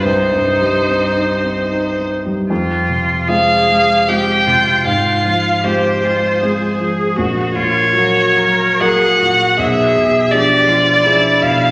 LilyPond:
<<
  \new Staff \with { instrumentName = "Violin" } { \time 3/4 \key c \minor \tempo 4 = 77 c''2~ c''8 r8 | \key f \minor r4 f''4 g''4 | f''4 c''4. r8 | r8 des''4. ges''4 |
e''4 d''4. f''8 | }
  \new Staff \with { instrumentName = "Cello" } { \time 3/4 \key c \minor ees'2~ ees'8 r8 | \key f \minor f'4 aes'4 g'8 f'8 | f'4 g'8 f'8 aes'4 | ges'8 f'8 ges'8 bes'8 aes'8 ges'8 |
gis'4 g'8 f'8 e'4 | }
  \new Staff \with { instrumentName = "Grand piano" } { \clef bass \time 3/4 \key c \minor \tuplet 3/2 { c,8 g,8 g8 c'8 ees'8 c'8 ees'8 c'8 g8 } | \key f \minor f,8 c8 <aes c' f'>8 aes8 <aes c' f'>8 c8 | aes,8 f8 <aes c' f'>8 aes8 <aes c' f'>8 f8 | bes,,8 bes,8 <ges bes bes'>8 ges8 <ges bes bes'>8 bes,8 |
b,,8 b,8 <f d' gis'>8 f8 <f d' gis'>8 b,8 | }
>>